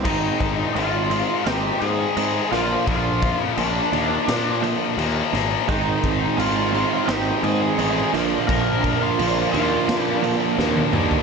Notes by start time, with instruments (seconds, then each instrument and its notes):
0.04 picked electric bass G#1, distorted electric guitar G#2 D#3 G#3, clean electric guitar G#3 C4 D#4, lead electric guitar D#4 D#5, kick, crash
0.40 picked electric bass G#1, clean electric guitar G#3 C4, kick, crash
0.75 picked electric bass G#1, distorted electric guitar G#2 D#3 G#3, clean electric guitar G#3 C4, lead electric guitar F4 F5, crash
1.10 distorted electric guitar G#2 D#3 G#3, clean electric guitar G#3 C4, crash
1.46 picked electric bass G#1, distorted electric guitar G#2 D#3 G#3, clean electric guitar G#3 C4 D#4, lead electric guitar G4 G5, snare, crash
1.80 picked electric bass G#2, clean electric guitar G#3 C4, lead electric guitar G#4 G#5, crash
2.16 distorted electric guitar G#2 D#3 G#3, picked electric bass G#2, clean electric guitar G#3 C4, crash
2.51 picked electric bass A#1, clean electric guitar A#2 D3 F3, distorted electric guitar A#2 F3 A#3, lead electric guitar F4 F5, snare, crash
2.87 picked electric bass A#1, clean electric guitar A#2 D3 F3, distorted electric guitar A#2 F3 A#3, lead electric guitar F4 F5, kick, crash
3.22 clean electric guitar D3, kick, crash
3.41 lead electric guitar D#5
3.57 picked electric bass A#1, clean electric guitar A#2 D3, distorted electric guitar A#2 F3 A#3, lead electric guitar D4 D5, crash
3.92 picked electric bass D#2, clean electric guitar A#2 D3, distorted electric guitar A#2 F3 A#3, crash
4.28 clean electric guitar A#2 D3, picked electric bass A#2, distorted electric guitar A#2 F3 A#3, snare, crash
4.62 clean electric guitar A#2 D3 F3, crash
4.97 picked electric bass D#2, clean electric guitar A#2 D3, distorted electric guitar A#2 F3 A#3, crash
5.33 picked electric bass G#1, clean electric guitar A#2 D3, distorted electric guitar A#2 F3 A#3, snare, crash
5.68 picked electric bass G#1, distorted electric guitar G#2 D#3 G#3, clean electric guitar G#3 C4 D#4, overdriven electric guitar C4 D#4, lead electric guitar D#4 D#5, kick, crash
6.03 picked electric bass G#1, clean electric guitar G#3 C4, kick, crash
6.37 picked electric bass G#1, distorted electric guitar G#2 D#3 G#3, clean electric guitar G#3 C4, overdriven electric guitar C4 D#4, lead electric guitar F4 F5, crash
6.72 distorted electric guitar G#2 D#3 G#3, clean electric guitar G#3 C4, overdriven electric guitar C4 D#4, crash
7.07 picked electric bass G#1, distorted electric guitar G#2 D#3 G#3, clean electric guitar G#3 C4 D#4, overdriven electric guitar C4 D#4, lead electric guitar G4 G5, snare, crash
7.43 picked electric bass G#2, clean electric guitar G#3 C4, lead electric guitar G#4 G#5, crash
7.79 picked electric bass A1, distorted electric guitar G#2 D#3 G#3, clean electric guitar G#3 C4, overdriven electric guitar C4 D#4, crash
8.13 picked electric bass A#1, clean electric guitar A#2 D3 F3, distorted electric guitar A#2 F3 A#3, overdriven electric guitar D3 D4, snare, crash
8.47 picked electric bass A#1, clean electric guitar A#2 D3 F3, distorted electric guitar A#2 F3 A#3, overdriven electric guitar D3 D4, lead electric guitar A#4 A#5, kick, crash
8.84 clean electric guitar A#2 D3, kick, crash
9.00 lead electric guitar F4 F5
9.19 picked electric bass A#1, distorted electric guitar A#2 F3 A#3, clean electric guitar A#2 D3, overdriven electric guitar D3 D4, crash
9.52 picked electric bass D#2, distorted electric guitar A#2 F3 A#3, clean electric guitar A#2 D3, overdriven electric guitar D3 D4, lead electric guitar F4 F5, crash
9.88 clean electric guitar A#2 D3, distorted electric guitar A#2 F3 A#3, picked electric bass A#2, overdriven electric guitar D3 D4, snare, crash
10.02 lead electric guitar D#5
10.22 clean electric guitar A#2 D3 F3, crash
10.58 picked electric bass D#2, clean electric guitar A#2 D3, distorted electric guitar A#2 F3 A#3, overdriven electric guitar D3 D4, snare
10.76 high tom
10.93 picked electric bass D#2, clean electric guitar A#2 D3, distorted electric guitar A#2 F3 A#3, overdriven electric guitar D3 D4, mid tom
11.11 floor tom